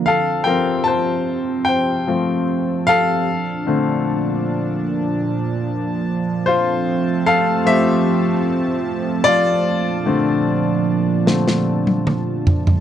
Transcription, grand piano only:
0.06 A4 F5
0.44 F3 C4 A4 A#4 G5
0.84 C5 A5
1.65 G5
1.69 C5
2.08 F3 A3 C4
2.87 A4 F5
3.67 D3 A3 C4
6.46 F4 C5
7.26 A4 F5
7.65 F3 A3 C4 G4 E5
9.24 F4 D5
10.06 D3 A3 C4
11.26 D3 A3 C4

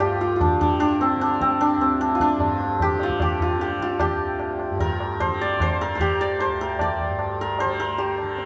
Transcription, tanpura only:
Already playing: D2 G2 D3
0.56 D3
1.15 D3
1.77 D2
2.36 G2
2.93 D3
3.52 D3
4.10 D2
4.69 G2
5.28 D3
5.87 D3
6.47 D2
7.06 G2
7.64 D3
8.22 D3

